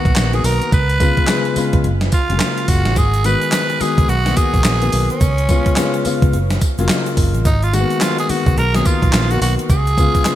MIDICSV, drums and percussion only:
0, 0, Header, 1, 2, 480
1, 0, Start_track
1, 0, Tempo, 560748
1, 620, Time_signature, 4, 2, 24, 8
1, 8860, End_track
2, 0, Start_track
2, 0, Title_t, "Drums"
2, 45, Note_on_c, 9, 36, 88
2, 49, Note_on_c, 9, 42, 54
2, 130, Note_off_c, 9, 36, 0
2, 134, Note_on_c, 9, 39, 91
2, 135, Note_off_c, 9, 42, 0
2, 138, Note_on_c, 9, 42, 81
2, 139, Note_on_c, 9, 54, 92
2, 141, Note_on_c, 9, 38, 121
2, 220, Note_off_c, 9, 39, 0
2, 224, Note_off_c, 9, 42, 0
2, 225, Note_off_c, 9, 54, 0
2, 227, Note_off_c, 9, 38, 0
2, 286, Note_on_c, 9, 42, 55
2, 371, Note_off_c, 9, 42, 0
2, 380, Note_on_c, 9, 46, 80
2, 383, Note_on_c, 9, 54, 72
2, 465, Note_off_c, 9, 46, 0
2, 469, Note_off_c, 9, 54, 0
2, 527, Note_on_c, 9, 42, 57
2, 613, Note_off_c, 9, 42, 0
2, 620, Note_on_c, 9, 36, 123
2, 621, Note_on_c, 9, 42, 71
2, 621, Note_on_c, 9, 54, 67
2, 705, Note_off_c, 9, 36, 0
2, 706, Note_off_c, 9, 42, 0
2, 706, Note_off_c, 9, 54, 0
2, 767, Note_on_c, 9, 42, 59
2, 852, Note_off_c, 9, 42, 0
2, 858, Note_on_c, 9, 54, 68
2, 859, Note_on_c, 9, 36, 84
2, 859, Note_on_c, 9, 42, 67
2, 944, Note_off_c, 9, 54, 0
2, 945, Note_off_c, 9, 36, 0
2, 945, Note_off_c, 9, 42, 0
2, 1003, Note_on_c, 9, 42, 57
2, 1005, Note_on_c, 9, 36, 84
2, 1089, Note_off_c, 9, 42, 0
2, 1089, Note_on_c, 9, 39, 85
2, 1090, Note_off_c, 9, 36, 0
2, 1093, Note_on_c, 9, 42, 82
2, 1094, Note_on_c, 9, 54, 99
2, 1096, Note_on_c, 9, 38, 102
2, 1175, Note_off_c, 9, 39, 0
2, 1179, Note_off_c, 9, 42, 0
2, 1180, Note_off_c, 9, 54, 0
2, 1182, Note_off_c, 9, 38, 0
2, 1242, Note_on_c, 9, 42, 49
2, 1327, Note_off_c, 9, 42, 0
2, 1336, Note_on_c, 9, 46, 71
2, 1336, Note_on_c, 9, 54, 66
2, 1421, Note_off_c, 9, 46, 0
2, 1422, Note_off_c, 9, 54, 0
2, 1481, Note_on_c, 9, 42, 57
2, 1484, Note_on_c, 9, 36, 99
2, 1567, Note_off_c, 9, 42, 0
2, 1570, Note_off_c, 9, 36, 0
2, 1576, Note_on_c, 9, 42, 78
2, 1662, Note_off_c, 9, 42, 0
2, 1721, Note_on_c, 9, 38, 67
2, 1721, Note_on_c, 9, 42, 50
2, 1806, Note_off_c, 9, 42, 0
2, 1807, Note_off_c, 9, 38, 0
2, 1814, Note_on_c, 9, 54, 78
2, 1816, Note_on_c, 9, 42, 81
2, 1820, Note_on_c, 9, 36, 99
2, 1900, Note_off_c, 9, 54, 0
2, 1902, Note_off_c, 9, 42, 0
2, 1905, Note_off_c, 9, 36, 0
2, 1967, Note_on_c, 9, 42, 56
2, 2052, Note_off_c, 9, 42, 0
2, 2052, Note_on_c, 9, 39, 94
2, 2056, Note_on_c, 9, 42, 78
2, 2057, Note_on_c, 9, 54, 92
2, 2059, Note_on_c, 9, 38, 114
2, 2138, Note_off_c, 9, 39, 0
2, 2142, Note_off_c, 9, 42, 0
2, 2143, Note_off_c, 9, 54, 0
2, 2145, Note_off_c, 9, 38, 0
2, 2205, Note_on_c, 9, 42, 55
2, 2290, Note_off_c, 9, 42, 0
2, 2294, Note_on_c, 9, 46, 93
2, 2297, Note_on_c, 9, 36, 91
2, 2298, Note_on_c, 9, 54, 75
2, 2380, Note_off_c, 9, 46, 0
2, 2383, Note_off_c, 9, 36, 0
2, 2383, Note_off_c, 9, 54, 0
2, 2443, Note_on_c, 9, 42, 57
2, 2444, Note_on_c, 9, 38, 67
2, 2528, Note_off_c, 9, 42, 0
2, 2529, Note_off_c, 9, 38, 0
2, 2535, Note_on_c, 9, 42, 69
2, 2535, Note_on_c, 9, 54, 64
2, 2536, Note_on_c, 9, 82, 71
2, 2538, Note_on_c, 9, 36, 114
2, 2621, Note_off_c, 9, 42, 0
2, 2621, Note_off_c, 9, 54, 0
2, 2622, Note_off_c, 9, 82, 0
2, 2623, Note_off_c, 9, 36, 0
2, 2684, Note_on_c, 9, 82, 54
2, 2685, Note_on_c, 9, 42, 53
2, 2770, Note_off_c, 9, 42, 0
2, 2770, Note_off_c, 9, 82, 0
2, 2775, Note_on_c, 9, 54, 63
2, 2777, Note_on_c, 9, 42, 68
2, 2777, Note_on_c, 9, 82, 49
2, 2861, Note_off_c, 9, 54, 0
2, 2862, Note_off_c, 9, 42, 0
2, 2863, Note_off_c, 9, 82, 0
2, 2923, Note_on_c, 9, 42, 57
2, 2924, Note_on_c, 9, 82, 56
2, 3009, Note_off_c, 9, 42, 0
2, 3010, Note_off_c, 9, 82, 0
2, 3011, Note_on_c, 9, 39, 82
2, 3014, Note_on_c, 9, 82, 82
2, 3015, Note_on_c, 9, 42, 80
2, 3016, Note_on_c, 9, 54, 94
2, 3018, Note_on_c, 9, 38, 97
2, 3097, Note_off_c, 9, 39, 0
2, 3100, Note_off_c, 9, 82, 0
2, 3101, Note_off_c, 9, 42, 0
2, 3102, Note_off_c, 9, 54, 0
2, 3104, Note_off_c, 9, 38, 0
2, 3162, Note_on_c, 9, 82, 50
2, 3164, Note_on_c, 9, 42, 50
2, 3248, Note_off_c, 9, 82, 0
2, 3249, Note_off_c, 9, 42, 0
2, 3253, Note_on_c, 9, 82, 47
2, 3258, Note_on_c, 9, 46, 74
2, 3259, Note_on_c, 9, 54, 62
2, 3339, Note_off_c, 9, 82, 0
2, 3344, Note_off_c, 9, 46, 0
2, 3344, Note_off_c, 9, 54, 0
2, 3406, Note_on_c, 9, 36, 96
2, 3407, Note_on_c, 9, 42, 57
2, 3408, Note_on_c, 9, 82, 51
2, 3492, Note_off_c, 9, 36, 0
2, 3492, Note_off_c, 9, 42, 0
2, 3493, Note_off_c, 9, 82, 0
2, 3498, Note_on_c, 9, 82, 68
2, 3503, Note_on_c, 9, 42, 76
2, 3583, Note_off_c, 9, 82, 0
2, 3588, Note_off_c, 9, 42, 0
2, 3646, Note_on_c, 9, 38, 68
2, 3646, Note_on_c, 9, 42, 53
2, 3646, Note_on_c, 9, 82, 51
2, 3731, Note_off_c, 9, 42, 0
2, 3731, Note_off_c, 9, 82, 0
2, 3732, Note_off_c, 9, 38, 0
2, 3736, Note_on_c, 9, 54, 77
2, 3739, Note_on_c, 9, 42, 80
2, 3740, Note_on_c, 9, 82, 58
2, 3741, Note_on_c, 9, 36, 99
2, 3822, Note_off_c, 9, 54, 0
2, 3824, Note_off_c, 9, 42, 0
2, 3826, Note_off_c, 9, 36, 0
2, 3826, Note_off_c, 9, 82, 0
2, 3884, Note_on_c, 9, 36, 90
2, 3886, Note_on_c, 9, 42, 58
2, 3887, Note_on_c, 9, 82, 55
2, 3970, Note_off_c, 9, 36, 0
2, 3971, Note_on_c, 9, 39, 97
2, 3972, Note_off_c, 9, 42, 0
2, 3972, Note_off_c, 9, 82, 0
2, 3976, Note_on_c, 9, 42, 77
2, 3976, Note_on_c, 9, 54, 98
2, 3979, Note_on_c, 9, 38, 118
2, 3979, Note_on_c, 9, 82, 68
2, 4057, Note_off_c, 9, 39, 0
2, 4061, Note_off_c, 9, 42, 0
2, 4062, Note_off_c, 9, 54, 0
2, 4064, Note_off_c, 9, 38, 0
2, 4064, Note_off_c, 9, 82, 0
2, 4122, Note_on_c, 9, 42, 54
2, 4126, Note_on_c, 9, 82, 54
2, 4208, Note_off_c, 9, 42, 0
2, 4211, Note_off_c, 9, 82, 0
2, 4216, Note_on_c, 9, 46, 90
2, 4219, Note_on_c, 9, 54, 65
2, 4301, Note_off_c, 9, 46, 0
2, 4305, Note_off_c, 9, 54, 0
2, 4364, Note_on_c, 9, 82, 59
2, 4367, Note_on_c, 9, 42, 53
2, 4450, Note_off_c, 9, 82, 0
2, 4452, Note_off_c, 9, 42, 0
2, 4458, Note_on_c, 9, 82, 73
2, 4459, Note_on_c, 9, 36, 124
2, 4459, Note_on_c, 9, 42, 70
2, 4459, Note_on_c, 9, 54, 68
2, 4544, Note_off_c, 9, 82, 0
2, 4545, Note_off_c, 9, 36, 0
2, 4545, Note_off_c, 9, 42, 0
2, 4545, Note_off_c, 9, 54, 0
2, 4604, Note_on_c, 9, 82, 54
2, 4607, Note_on_c, 9, 42, 59
2, 4690, Note_off_c, 9, 82, 0
2, 4693, Note_off_c, 9, 42, 0
2, 4696, Note_on_c, 9, 54, 70
2, 4697, Note_on_c, 9, 42, 71
2, 4699, Note_on_c, 9, 36, 78
2, 4699, Note_on_c, 9, 82, 49
2, 4782, Note_off_c, 9, 54, 0
2, 4783, Note_off_c, 9, 42, 0
2, 4784, Note_off_c, 9, 36, 0
2, 4785, Note_off_c, 9, 82, 0
2, 4844, Note_on_c, 9, 42, 58
2, 4845, Note_on_c, 9, 36, 87
2, 4846, Note_on_c, 9, 82, 55
2, 4929, Note_off_c, 9, 42, 0
2, 4930, Note_off_c, 9, 36, 0
2, 4931, Note_on_c, 9, 39, 82
2, 4932, Note_off_c, 9, 82, 0
2, 4935, Note_on_c, 9, 42, 81
2, 4935, Note_on_c, 9, 82, 82
2, 4936, Note_on_c, 9, 54, 95
2, 4938, Note_on_c, 9, 38, 98
2, 5016, Note_off_c, 9, 39, 0
2, 5020, Note_off_c, 9, 82, 0
2, 5021, Note_off_c, 9, 42, 0
2, 5022, Note_off_c, 9, 54, 0
2, 5024, Note_off_c, 9, 38, 0
2, 5083, Note_on_c, 9, 42, 50
2, 5084, Note_on_c, 9, 82, 54
2, 5169, Note_off_c, 9, 42, 0
2, 5170, Note_off_c, 9, 82, 0
2, 5177, Note_on_c, 9, 82, 40
2, 5178, Note_on_c, 9, 46, 72
2, 5179, Note_on_c, 9, 54, 59
2, 5262, Note_off_c, 9, 82, 0
2, 5264, Note_off_c, 9, 46, 0
2, 5264, Note_off_c, 9, 54, 0
2, 5327, Note_on_c, 9, 36, 104
2, 5327, Note_on_c, 9, 42, 54
2, 5330, Note_on_c, 9, 82, 51
2, 5413, Note_off_c, 9, 36, 0
2, 5413, Note_off_c, 9, 42, 0
2, 5416, Note_off_c, 9, 82, 0
2, 5419, Note_on_c, 9, 82, 65
2, 5422, Note_on_c, 9, 42, 76
2, 5505, Note_off_c, 9, 82, 0
2, 5508, Note_off_c, 9, 42, 0
2, 5567, Note_on_c, 9, 82, 50
2, 5568, Note_on_c, 9, 38, 73
2, 5568, Note_on_c, 9, 42, 56
2, 5652, Note_off_c, 9, 82, 0
2, 5653, Note_off_c, 9, 42, 0
2, 5654, Note_off_c, 9, 38, 0
2, 5661, Note_on_c, 9, 54, 77
2, 5662, Note_on_c, 9, 82, 54
2, 5663, Note_on_c, 9, 36, 91
2, 5663, Note_on_c, 9, 42, 80
2, 5746, Note_off_c, 9, 54, 0
2, 5747, Note_off_c, 9, 82, 0
2, 5749, Note_off_c, 9, 36, 0
2, 5749, Note_off_c, 9, 42, 0
2, 5805, Note_on_c, 9, 82, 58
2, 5809, Note_on_c, 9, 42, 55
2, 5891, Note_off_c, 9, 82, 0
2, 5894, Note_on_c, 9, 39, 99
2, 5895, Note_off_c, 9, 42, 0
2, 5898, Note_on_c, 9, 42, 73
2, 5899, Note_on_c, 9, 54, 98
2, 5900, Note_on_c, 9, 82, 69
2, 5901, Note_on_c, 9, 38, 115
2, 5980, Note_off_c, 9, 39, 0
2, 5984, Note_off_c, 9, 42, 0
2, 5985, Note_off_c, 9, 54, 0
2, 5986, Note_off_c, 9, 82, 0
2, 5987, Note_off_c, 9, 38, 0
2, 6046, Note_on_c, 9, 42, 55
2, 6049, Note_on_c, 9, 82, 56
2, 6132, Note_off_c, 9, 42, 0
2, 6135, Note_off_c, 9, 82, 0
2, 6138, Note_on_c, 9, 46, 90
2, 6139, Note_on_c, 9, 36, 91
2, 6142, Note_on_c, 9, 54, 70
2, 6224, Note_off_c, 9, 36, 0
2, 6224, Note_off_c, 9, 46, 0
2, 6227, Note_off_c, 9, 54, 0
2, 6286, Note_on_c, 9, 82, 62
2, 6287, Note_on_c, 9, 42, 55
2, 6372, Note_off_c, 9, 82, 0
2, 6373, Note_off_c, 9, 42, 0
2, 6379, Note_on_c, 9, 36, 122
2, 6380, Note_on_c, 9, 42, 69
2, 6380, Note_on_c, 9, 54, 71
2, 6380, Note_on_c, 9, 82, 76
2, 6465, Note_off_c, 9, 36, 0
2, 6465, Note_off_c, 9, 42, 0
2, 6465, Note_off_c, 9, 54, 0
2, 6465, Note_off_c, 9, 82, 0
2, 6527, Note_on_c, 9, 42, 53
2, 6530, Note_on_c, 9, 82, 56
2, 6613, Note_off_c, 9, 42, 0
2, 6616, Note_off_c, 9, 82, 0
2, 6620, Note_on_c, 9, 54, 65
2, 6622, Note_on_c, 9, 42, 69
2, 6622, Note_on_c, 9, 82, 51
2, 6706, Note_off_c, 9, 54, 0
2, 6707, Note_off_c, 9, 42, 0
2, 6708, Note_off_c, 9, 82, 0
2, 6766, Note_on_c, 9, 42, 57
2, 6771, Note_on_c, 9, 82, 55
2, 6851, Note_off_c, 9, 42, 0
2, 6854, Note_on_c, 9, 39, 77
2, 6857, Note_off_c, 9, 82, 0
2, 6858, Note_on_c, 9, 42, 81
2, 6859, Note_on_c, 9, 54, 93
2, 6859, Note_on_c, 9, 82, 78
2, 6861, Note_on_c, 9, 38, 98
2, 6939, Note_off_c, 9, 39, 0
2, 6943, Note_off_c, 9, 42, 0
2, 6944, Note_off_c, 9, 82, 0
2, 6945, Note_off_c, 9, 54, 0
2, 6946, Note_off_c, 9, 38, 0
2, 7006, Note_on_c, 9, 42, 52
2, 7006, Note_on_c, 9, 82, 51
2, 7092, Note_off_c, 9, 42, 0
2, 7092, Note_off_c, 9, 82, 0
2, 7099, Note_on_c, 9, 82, 45
2, 7100, Note_on_c, 9, 46, 75
2, 7100, Note_on_c, 9, 54, 59
2, 7184, Note_off_c, 9, 82, 0
2, 7185, Note_off_c, 9, 46, 0
2, 7186, Note_off_c, 9, 54, 0
2, 7244, Note_on_c, 9, 42, 53
2, 7246, Note_on_c, 9, 36, 99
2, 7252, Note_on_c, 9, 82, 48
2, 7330, Note_off_c, 9, 42, 0
2, 7331, Note_off_c, 9, 36, 0
2, 7338, Note_off_c, 9, 82, 0
2, 7341, Note_on_c, 9, 42, 71
2, 7341, Note_on_c, 9, 82, 68
2, 7426, Note_off_c, 9, 82, 0
2, 7427, Note_off_c, 9, 42, 0
2, 7485, Note_on_c, 9, 42, 52
2, 7486, Note_on_c, 9, 38, 72
2, 7488, Note_on_c, 9, 82, 51
2, 7571, Note_off_c, 9, 42, 0
2, 7572, Note_off_c, 9, 38, 0
2, 7573, Note_off_c, 9, 82, 0
2, 7578, Note_on_c, 9, 54, 76
2, 7580, Note_on_c, 9, 82, 55
2, 7581, Note_on_c, 9, 42, 76
2, 7582, Note_on_c, 9, 36, 103
2, 7664, Note_off_c, 9, 54, 0
2, 7665, Note_off_c, 9, 82, 0
2, 7666, Note_off_c, 9, 42, 0
2, 7668, Note_off_c, 9, 36, 0
2, 7725, Note_on_c, 9, 36, 87
2, 7725, Note_on_c, 9, 82, 55
2, 7728, Note_on_c, 9, 42, 55
2, 7810, Note_off_c, 9, 36, 0
2, 7811, Note_off_c, 9, 82, 0
2, 7813, Note_off_c, 9, 42, 0
2, 7814, Note_on_c, 9, 39, 104
2, 7817, Note_on_c, 9, 82, 69
2, 7818, Note_on_c, 9, 42, 84
2, 7819, Note_on_c, 9, 54, 92
2, 7821, Note_on_c, 9, 38, 111
2, 7900, Note_off_c, 9, 39, 0
2, 7903, Note_off_c, 9, 82, 0
2, 7904, Note_off_c, 9, 42, 0
2, 7905, Note_off_c, 9, 54, 0
2, 7907, Note_off_c, 9, 38, 0
2, 7964, Note_on_c, 9, 82, 54
2, 7967, Note_on_c, 9, 42, 51
2, 8050, Note_off_c, 9, 82, 0
2, 8053, Note_off_c, 9, 42, 0
2, 8061, Note_on_c, 9, 46, 86
2, 8064, Note_on_c, 9, 54, 72
2, 8146, Note_off_c, 9, 46, 0
2, 8150, Note_off_c, 9, 54, 0
2, 8205, Note_on_c, 9, 82, 55
2, 8209, Note_on_c, 9, 42, 53
2, 8291, Note_off_c, 9, 82, 0
2, 8295, Note_off_c, 9, 42, 0
2, 8299, Note_on_c, 9, 82, 71
2, 8300, Note_on_c, 9, 36, 116
2, 8302, Note_on_c, 9, 42, 72
2, 8302, Note_on_c, 9, 54, 69
2, 8384, Note_off_c, 9, 82, 0
2, 8386, Note_off_c, 9, 36, 0
2, 8388, Note_off_c, 9, 42, 0
2, 8388, Note_off_c, 9, 54, 0
2, 8445, Note_on_c, 9, 82, 60
2, 8450, Note_on_c, 9, 42, 55
2, 8530, Note_off_c, 9, 82, 0
2, 8536, Note_off_c, 9, 42, 0
2, 8540, Note_on_c, 9, 36, 84
2, 8540, Note_on_c, 9, 82, 50
2, 8542, Note_on_c, 9, 54, 67
2, 8543, Note_on_c, 9, 42, 72
2, 8626, Note_off_c, 9, 36, 0
2, 8626, Note_off_c, 9, 82, 0
2, 8628, Note_off_c, 9, 54, 0
2, 8629, Note_off_c, 9, 42, 0
2, 8686, Note_on_c, 9, 36, 91
2, 8686, Note_on_c, 9, 82, 57
2, 8687, Note_on_c, 9, 42, 58
2, 8772, Note_off_c, 9, 36, 0
2, 8772, Note_off_c, 9, 42, 0
2, 8772, Note_off_c, 9, 82, 0
2, 8775, Note_on_c, 9, 39, 88
2, 8776, Note_on_c, 9, 82, 85
2, 8779, Note_on_c, 9, 42, 85
2, 8780, Note_on_c, 9, 54, 90
2, 8782, Note_on_c, 9, 38, 100
2, 8860, Note_off_c, 9, 38, 0
2, 8860, Note_off_c, 9, 39, 0
2, 8860, Note_off_c, 9, 42, 0
2, 8860, Note_off_c, 9, 54, 0
2, 8860, Note_off_c, 9, 82, 0
2, 8860, End_track
0, 0, End_of_file